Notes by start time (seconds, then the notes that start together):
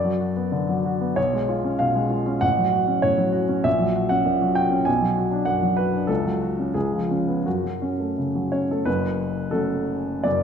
Already playing: F#2 D5
0.04 F#3
0.20 F#4
0.36 B3
0.52 D3
0.69 F#3
0.86 F#4
1.01 B3
1.16 B1 C#5
1.34 G#3
1.49 F4
1.64 C#4
1.79 B2 F5
1.95 G#3
2.10 F4
2.26 C#4
2.41 A1 F#5
2.58 F#3
2.73 F#4
2.88 C#4
3.02 A2 C#5
3.18 F#3
3.33 F#4
3.49 C#4
3.64 A#1 E5
3.79 F#3
3.95 F#4
4.09 C#4 F#5
4.26 A#2
4.42 F#3
4.55 F#4 G5
4.72 C#4
4.85 B1 G#5
5.01 F#3
5.17 F#4
5.31 D4
5.45 F#2 F#5
5.62 F#3
5.77 F#4 B4
5.93 D4
6.07 C#2 A4
6.25 F#3
6.42 F#4
6.59 C#4
6.74 C#2 G#4
6.93 F3
7.11 C#4
7.28 B3
7.46 F#2 F#4
7.64 F#3
7.82 C#4
8.00 A3
8.18 C#3
8.35 F#3
8.52 C#4 C#5
8.71 A3 A4
8.85 F#1 F#2 B4
9.51 F#3 A3 C#4 A4
10.23 F#1 F#2 D5